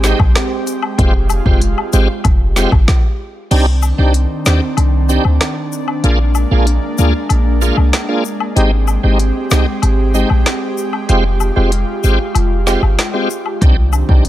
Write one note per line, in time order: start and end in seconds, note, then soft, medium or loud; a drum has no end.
0.00 0.13 G#1 loud
0.00 0.96 G#3 medium
0.00 0.19 G#3 medium
0.00 0.96 C4 medium
0.00 0.19 C4 medium
0.00 0.19 D#4 medium
0.00 2.84 G4 medium
0.00 snare medium
0.00 closed hi-hat soft
0.00 cabasa medium
0.04 0.19 G4 medium
0.19 0.33 A#1 medium
0.19 kick loud
0.19 high woodblock medium
0.35 cross-stick medium
0.35 snare loud
0.35 closed hi-hat medium
0.67 closed hi-hat medium
0.67 cabasa medium
0.82 high woodblock medium
0.98 1.40 F1 loud
0.98 1.13 G#3 loud
0.98 2.86 G#3 medium
0.98 1.13 C4 medium
0.98 2.86 F4 medium
0.98 1.14 F4 medium
0.98 1.14 G4 loud
0.98 kick loud
0.98 closed hi-hat medium
1.30 closed hi-hat soft
1.30 cabasa medium
1.30 high woodblock medium
1.46 1.73 F1 loud
1.46 1.61 G#3 medium
1.46 1.61 C4 medium
1.46 1.61 F4 medium
1.46 1.61 G4 medium
1.46 kick medium
1.61 closed hi-hat medium
1.78 high woodblock medium
1.93 2.07 G#1 medium
1.93 2.08 G#3 medium
1.93 2.08 C4 medium
1.93 2.08 F4 medium
1.93 2.08 G4 medium
1.93 closed hi-hat medium
1.93 cabasa medium
2.24 2.66 F1 loud
2.24 kick loud
2.24 closed hi-hat medium
2.24 high woodblock medium
2.56 2.71 G#3 medium
2.56 2.71 C4 medium
2.56 2.71 F4 medium
2.56 2.71 G4 medium
2.56 snare medium
2.56 closed hi-hat soft
2.56 cabasa medium
2.72 2.86 G1 medium
2.72 kick medium
2.72 high woodblock medium
2.88 kick loud
2.88 snare medium
3.51 3.92 C2 loud
3.51 6.01 D#3 medium
3.51 3.66 C4 medium
3.51 6.01 C4 medium
3.51 8.52 D4 medium
3.51 3.66 D4 medium
3.51 3.66 D#4 medium
3.51 3.66 G4 loud
3.51 closed hi-hat medium
3.51 crash medium
3.82 cabasa medium
3.82 high woodblock medium
3.98 4.26 C2 loud
3.98 4.13 C4 medium
3.98 4.13 D4 medium
3.98 4.13 D#4 medium
3.98 4.14 G4 medium
4.14 closed hi-hat medium
4.46 4.60 D#2 loud
4.46 4.61 C4 medium
4.46 4.61 D4 medium
4.46 4.61 D#4 medium
4.46 4.61 G4 medium
4.46 snare loud
4.46 cabasa medium
4.77 5.18 C2 loud
4.77 closed hi-hat medium
4.77 high woodblock medium
5.09 5.24 C4 medium
5.09 5.24 D4 medium
5.09 5.24 D#4 medium
5.09 5.24 G4 medium
5.09 cabasa medium
5.25 5.39 D2 medium
5.25 high woodblock medium
5.41 cross-stick medium
5.41 snare loud
5.41 closed hi-hat medium
5.72 cabasa medium
5.88 high woodblock medium
6.04 6.45 A#1 loud
6.04 13.58 G#3 medium
6.04 6.19 A#3 medium
6.04 8.54 A#3 medium
6.04 6.19 D4 medium
6.04 6.19 F4 medium
6.04 6.19 G#4 loud
6.04 closed hi-hat medium
6.35 cabasa medium
6.35 high woodblock medium
6.51 6.79 A#1 loud
6.51 6.66 A#3 medium
6.51 6.66 D4 medium
6.51 6.66 F4 medium
6.51 6.66 G#4 medium
6.67 closed hi-hat medium
6.98 7.12 D2 medium
6.98 7.13 A#3 medium
6.98 7.13 D4 medium
6.98 7.14 F4 medium
6.98 7.14 G#4 medium
6.98 cabasa medium
7.29 7.71 A#1 loud
7.29 closed hi-hat medium
7.29 high woodblock medium
7.61 7.76 A#3 medium
7.61 7.76 D4 medium
7.61 7.77 F4 medium
7.61 7.77 G#4 medium
7.61 cabasa medium
7.77 7.91 C2 medium
7.77 high woodblock medium
7.93 cross-stick medium
7.93 snare loud
7.93 closed hi-hat medium
8.09 8.24 A#3 medium
8.09 8.24 D4 medium
8.09 8.24 F4 medium
8.09 8.24 G#4 medium
8.25 cabasa medium
8.40 high woodblock medium
8.56 8.97 G#1 loud
8.56 8.71 G#3 loud
8.56 11.06 C4 medium
8.56 8.71 C4 medium
8.56 8.71 D#4 medium
8.56 13.58 G4 medium
8.56 8.71 G4 loud
8.56 closed hi-hat medium
8.88 cabasa medium
8.88 high woodblock medium
9.03 9.31 G#1 loud
9.03 9.19 G#3 medium
9.03 9.19 C4 medium
9.03 9.19 D#4 medium
9.03 9.19 G4 medium
9.19 closed hi-hat medium
9.51 9.65 C2 loud
9.51 9.66 G#3 medium
9.51 9.66 C4 medium
9.51 9.66 D#4 medium
9.51 9.66 G4 medium
9.51 snare loud
9.51 cabasa medium
9.82 10.24 G#1 loud
9.82 closed hi-hat medium
9.82 high woodblock medium
10.14 10.29 G#3 medium
10.14 10.29 C4 medium
10.14 10.29 D#4 medium
10.14 10.29 G4 medium
10.14 cabasa medium
10.30 10.44 A#1 medium
10.30 high woodblock medium
10.46 cross-stick medium
10.46 snare loud
10.46 closed hi-hat medium
10.78 cabasa medium
10.93 high woodblock medium
11.09 11.50 F1 loud
11.09 11.24 G#3 loud
11.09 11.24 C4 medium
11.09 13.59 F4 medium
11.09 11.24 F4 medium
11.09 11.24 G4 loud
11.09 closed hi-hat medium
11.40 cabasa medium
11.40 high woodblock medium
11.56 11.84 F1 medium
11.56 11.71 G#3 medium
11.56 11.71 C4 medium
11.56 11.71 F4 medium
11.56 11.71 G4 medium
11.72 closed hi-hat medium
12.03 12.18 G#1 medium
12.03 12.19 G#3 medium
12.03 12.19 C4 medium
12.03 12.19 F4 medium
12.03 12.19 G4 medium
12.03 cabasa medium
12.35 12.76 F1 loud
12.35 closed hi-hat medium
12.35 high woodblock medium
12.66 12.82 G#3 medium
12.66 12.82 C4 medium
12.66 12.82 F4 medium
12.66 12.82 G4 medium
12.66 snare medium
12.66 cabasa medium
12.82 12.96 G1 medium
12.82 high woodblock medium
12.99 cross-stick medium
12.99 snare loud
12.99 closed hi-hat medium
13.14 13.29 G#3 medium
13.14 13.29 C4 medium
13.14 13.29 F4 medium
13.14 13.29 G4 medium
13.30 cabasa medium
13.46 high woodblock medium
13.61 14.03 C2 loud
13.61 14.29 D#3 medium
13.61 13.76 C4 medium
13.61 14.29 C4 medium
13.61 13.76 D4 medium
13.61 14.29 D4 medium
13.61 13.76 D#4 medium
13.61 13.77 G4 loud
13.61 kick loud
13.61 closed hi-hat medium
13.93 cabasa medium
13.93 high woodblock medium
14.09 14.29 C2 loud
14.09 14.24 C4 medium
14.09 14.24 D4 medium
14.09 14.24 D#4 medium
14.09 14.24 G4 medium
14.09 kick medium
14.25 closed hi-hat medium